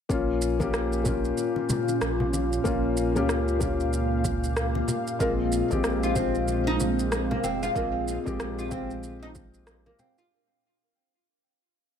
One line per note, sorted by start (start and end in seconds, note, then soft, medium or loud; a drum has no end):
0.09 1.31 A#1 medium
0.09 10.31 A#2 medium
0.09 0.56 A#3 medium
0.09 0.56 C#4 medium
0.09 0.57 F4 medium
0.09 kick loud
0.09 shaker soft
0.40 7.27 F4 medium
0.40 shaker medium
0.45 10.31 A#3 medium
0.56 1.02 A#3 medium
0.56 10.31 F5 medium
0.56 high conga medium
0.61 1.02 C#4 medium
0.61 1.03 G4 medium
0.61 kick medium
0.61 muted conga medium
0.61 shaker soft
0.74 cross-stick loud
0.74 shaker soft
0.89 5.20 C#4 medium
0.89 shaker soft
1.03 2.61 A#3 medium
1.03 2.62 C#4 medium
1.03 2.63 F4 medium
1.03 kick loud
1.03 low conga medium
1.03 shaker medium
1.25 shaker soft
1.38 high conga soft
1.38 shaker soft
1.56 muted conga medium
1.69 high conga medium
1.69 low conga medium
1.69 shaker medium
1.88 muted conga soft
1.88 shaker soft
2.01 2.59 A#1 medium
2.01 cross-stick loud
2.01 shaker soft
2.20 low conga loud
2.33 muted conga medium
2.33 high conga soft
2.33 shaker medium
2.53 shaker soft
2.64 3.17 A#1 medium
2.64 3.11 A#3 medium
2.64 3.11 C#4 medium
2.64 3.12 F4 loud
2.64 kick loud
2.64 shaker soft
2.97 shaker medium
3.15 4.82 C#2 medium
3.15 3.57 A#3 medium
3.15 3.58 C#4 medium
3.15 3.58 G4 medium
3.15 muted conga soft
3.15 high conga medium
3.15 shaker soft
3.29 cross-stick medium
3.29 shaker soft
3.48 shaker soft
3.59 5.16 A#3 medium
3.59 5.17 C#4 medium
3.59 5.18 F4 medium
3.59 kick loud
3.59 low conga medium
3.59 shaker medium
3.80 shaker soft
3.93 shaker soft
4.24 kick loud
4.24 high conga medium
4.24 shaker medium
4.44 shaker soft
4.57 cross-stick loud
4.57 shaker soft
4.75 muted conga medium
4.75 high conga medium
4.88 low conga medium
4.88 shaker medium
5.07 shaker soft
5.19 5.62 A#1 medium
5.19 5.66 G#3 medium
5.19 5.31 A#3 medium
5.19 5.67 C4 medium
5.19 5.67 F4 loud
5.19 kick loud
5.19 shaker soft
5.52 shaker medium
5.59 10.31 C4 medium
5.70 7.38 A#1 medium
5.70 6.12 G#3 medium
5.70 6.13 C4 medium
5.70 6.14 G4 medium
5.70 kick medium
5.70 muted conga soft
5.70 high conga medium
5.70 shaker soft
5.81 10.31 G#3 medium
5.81 cross-stick medium
5.81 shaker soft
6.03 6.15 F4 medium
6.03 shaker soft
6.14 7.72 G#3 medium
6.14 6.34 C4 medium
6.14 7.73 C4 medium
6.14 7.74 F4 medium
6.14 kick loud
6.14 low conga medium
6.14 shaker medium
6.35 shaker soft
6.48 high conga soft
6.48 shaker soft
6.67 6.74 D#4 loud
6.67 muted conga soft
6.80 high conga medium
6.80 low conga medium
6.80 shaker medium
6.99 muted conga soft
6.99 shaker soft
7.12 cross-stick loud
7.12 shaker soft
7.31 7.43 A#3 medium
7.31 low conga loud
7.44 7.68 F1 medium
7.44 7.62 C4 medium
7.44 muted conga medium
7.44 high conga soft
7.44 shaker medium
7.63 7.70 F4 loud
7.63 shaker soft
7.74 8.18 A#1 loud
7.74 8.21 G#3 medium
7.74 7.87 A#3 medium
7.74 8.22 C4 medium
7.74 8.22 F4 loud
7.74 kick loud
7.74 shaker soft
8.08 shaker medium
8.25 9.93 A#1 medium
8.25 8.67 G#3 medium
8.25 8.68 C4 medium
8.25 8.69 G4 medium
8.25 kick medium
8.25 muted conga soft
8.25 high conga medium
8.25 shaker soft
8.40 cross-stick loud
8.40 shaker soft
8.59 8.71 F4 medium
8.59 shaker soft
8.69 10.27 G#3 medium
8.69 10.28 C4 medium
8.69 8.89 C4 medium
8.69 kick loud
8.69 low conga medium
8.69 shaker medium
8.73 10.29 F4 medium
8.91 shaker soft
9.03 shaker soft
9.23 9.30 D#4 loud
9.35 kick loud
9.35 high conga medium
9.35 shaker medium
9.54 shaker soft
9.67 cross-stick loud
9.67 shaker soft
9.86 9.98 A#3 medium
9.86 muted conga medium
9.86 high conga medium
9.99 10.17 C4 medium
9.99 low conga medium
9.99 shaker medium
10.18 10.26 F4 loud
10.18 shaker soft